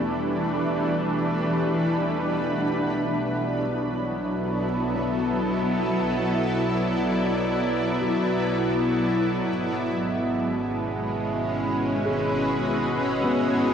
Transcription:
Already playing: E2 B2 E3 G3 A3 B3 D4 E4 F#4 B4
0.55 A4
2.62 B1 F#3
2.80 B3 F#5
3.00 E4
3.53 A4
4.96 B3
5.73 D5
8.00 F#4
9.48 G#1 G#3
9.94 C#4
10.92 F#4
11.04 B4
11.65 D#5
12.05 G#4
13.24 B3

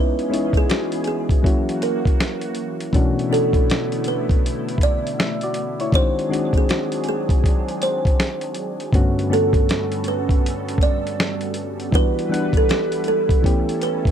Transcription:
Already playing: E3 G#3 B3 C#4 D#4 E4 G#4 B4
0.19 closed hi-hat
0.30 G#3 B3 C#4 D#4 E4
0.34 closed hi-hat
0.53 kick, closed hi-hat
0.57 G#4
0.70 F#4, snare, closed hi-hat
0.92 closed hi-hat
1.04 G#4, closed hi-hat
1.29 kick, closed hi-hat
1.43 F#3 A#3 C#4 E4 F#4, kick, closed hi-hat
1.69 closed hi-hat
1.82 A#4, closed hi-hat
2.05 kick, closed hi-hat
2.20 snare, closed hi-hat
2.41 closed hi-hat
2.55 closed hi-hat
2.80 closed hi-hat
2.92 B2 D3 E3 A3 B3 C#4 D4 E4 F#4, kick, closed hi-hat
3.19 closed hi-hat
3.29 B2 E3 A3 C#4 D4 F#4 A4
3.34 closed hi-hat
3.53 kick, closed hi-hat
3.70 snare, closed hi-hat
3.92 closed hi-hat
4.04 B4, closed hi-hat
4.29 kick, closed hi-hat
4.46 closed hi-hat
4.69 closed hi-hat
4.78 kick, closed hi-hat
4.83 D5
5.07 closed hi-hat
5.19 E5, snare, closed hi-hat
5.41 F#4 D5, closed hi-hat
5.54 closed hi-hat
5.80 E4 C#5, closed hi-hat
5.92 D#3 F#3 G#3 C4 D4 F#4 G#4 C5, kick, closed hi-hat
6.19 closed hi-hat
6.29 D#3 G#3 C4 D4 F#4
6.33 closed hi-hat
6.53 kick, closed hi-hat
6.58 G#4
6.69 F#4, snare, closed hi-hat
6.92 closed hi-hat
7.04 closed hi-hat
7.09 G#4
7.29 kick, closed hi-hat
7.44 kick, closed hi-hat
7.69 closed hi-hat
7.82 C5, closed hi-hat
8.05 kick, closed hi-hat
8.20 snare, closed hi-hat
8.41 closed hi-hat
8.55 closed hi-hat
8.80 closed hi-hat
8.92 G2 D3 G3 A3 B3 C#4 F#4 A4, kick, closed hi-hat
9.19 closed hi-hat
9.29 G2 D3 A3 B3 C#4 F#4
9.33 A4, closed hi-hat
9.53 kick, closed hi-hat
9.69 snare, closed hi-hat
9.92 closed hi-hat
10.04 closed hi-hat
10.08 B4
10.29 kick, closed hi-hat
10.46 closed hi-hat
10.69 closed hi-hat
10.78 kick, closed hi-hat
10.83 D5
11.07 closed hi-hat
11.20 snare, closed hi-hat
11.41 closed hi-hat
11.54 closed hi-hat
11.80 closed hi-hat
11.91 E3 G3 B3 D4 E4 F#4 B4, kick, closed hi-hat
12.19 closed hi-hat
12.29 E3 G3 B3 D4 F#5
12.34 closed hi-hat
12.53 kick, closed hi-hat
12.57 A4
12.69 G4, snare, closed hi-hat
12.92 closed hi-hat
13.04 closed hi-hat
13.08 A4
13.29 kick, closed hi-hat
13.42 E3 A3 B3 C#4 G4 A4, kick
13.46 closed hi-hat
13.69 closed hi-hat
13.81 B4, closed hi-hat
14.05 kick, closed hi-hat

